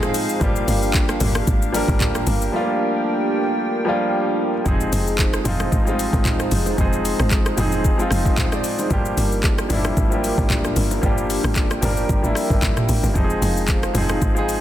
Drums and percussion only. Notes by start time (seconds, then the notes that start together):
0.03 cross-stick, high bongo, shaker
0.14 open hi-hat, shaker
0.29 shaker
0.41 kick, low conga, shaker
0.56 shaker
0.68 open hi-hat, shaker
0.83 shaker
0.94 kick, clap, high bongo, shaker
1.09 cross-stick, shaker
1.20 open hi-hat, low bongo, low conga, shaker
1.35 cross-stick, high bongo, low bongo, shaker
1.47 kick, shaker
1.62 shaker
1.74 open hi-hat, shaker
1.88 kick, low bongo, shaker
2.00 kick, clap, mid tom, high bongo, low conga, shaker
2.15 cross-stick, high bongo, shaker
2.27 open hi-hat, shaker
2.42 shaker
4.66 kick, low conga, shaker
4.80 shaker
4.93 open hi-hat, shaker
5.07 shaker
5.18 kick, clap, high bongo, shaker
5.33 cross-stick, shaker
5.45 open hi-hat, low bongo, low conga, shaker
5.60 cross-stick, low bongo, shaker
5.72 kick, shaker
5.87 shaker
5.99 open hi-hat, shaker
6.13 kick, low bongo, shaker
6.25 kick, clap, mid tom, high bongo, low conga, shaker
6.40 cross-stick, shaker
6.51 open hi-hat, shaker
6.66 low bongo, shaker
6.78 kick, low conga, shaker
6.93 shaker
7.05 open hi-hat, shaker
7.20 cross-stick, shaker
7.31 kick, clap, high bongo, shaker
7.46 cross-stick, shaker
7.58 open hi-hat, low bongo, low conga, shaker
7.72 low bongo, shaker
7.85 kick, shaker
7.99 shaker
8.11 cross-stick, open hi-hat, shaker
8.26 kick, low bongo, shaker
8.37 kick, clap, mid tom, high bongo, low conga, shaker
8.52 cross-stick, shaker
8.64 open hi-hat, shaker
8.79 low bongo, shaker
8.91 kick, low conga, shaker
9.05 shaker
9.18 open hi-hat, shaker
9.32 shaker
9.43 kick, clap, high bongo, shaker
9.58 cross-stick, shaker
9.70 open hi-hat, low bongo, low conga, shaker
9.85 cross-stick, low bongo, shaker
9.97 kick, shaker
10.12 shaker
10.24 open hi-hat, shaker
10.38 kick, low bongo, shaker
10.50 kick, clap, mid tom, high bongo, low conga, shaker
10.64 cross-stick, shaker
10.76 open hi-hat, shaker
10.91 low bongo, shaker
11.03 kick, low conga, shaker
11.18 shaker
11.30 open hi-hat, shaker
11.44 cross-stick, shaker
11.56 kick, clap, high bongo, shaker
11.71 cross-stick, shaker
11.82 open hi-hat, low bongo, low conga, shaker
11.97 shaker
12.09 kick, shaker
12.24 shaker
12.35 cross-stick, open hi-hat, shaker
12.50 kick, low bongo, shaker
12.62 kick, clap, high bongo, low conga, shaker
12.77 cross-stick, mid tom, shaker
12.89 open hi-hat, shaker
13.03 low bongo, shaker
13.15 kick, low conga, shaker
13.30 shaker
13.42 open hi-hat, shaker
13.57 shaker
13.68 kick, clap, high bongo, shaker
13.83 cross-stick, shaker
13.95 open hi-hat, low bongo, low conga, shaker
14.09 cross-stick, low bongo, shaker
14.22 kick, shaker
14.36 shaker
14.49 open hi-hat, shaker